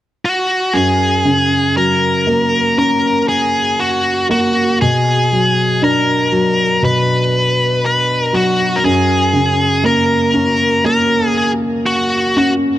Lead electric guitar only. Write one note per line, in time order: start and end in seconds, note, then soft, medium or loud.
0.25 0.76 F#4 soft
0.74 1.77 G#4 medium
1.77 2.77 A#4 soft
2.79 3.25 A#4 medium
3.29 3.80 G#4 soft
3.80 4.26 F#4 soft
4.31 4.78 F#4 medium
4.81 5.84 G#4 medium
5.84 6.84 A#4 medium
6.85 7.85 B4 medium
7.86 8.23 B4 medium
8.23 8.36 A#4 medium
8.35 8.78 F#4 medium
8.76 8.83 A#4 soft
8.85 9.86 G#4 medium
9.86 10.85 A#4 medium
10.86 11.37 A#4 medium
11.37 11.50 G#4 medium
11.86 12.37 F#4 medium
12.38 12.51 F#4 medium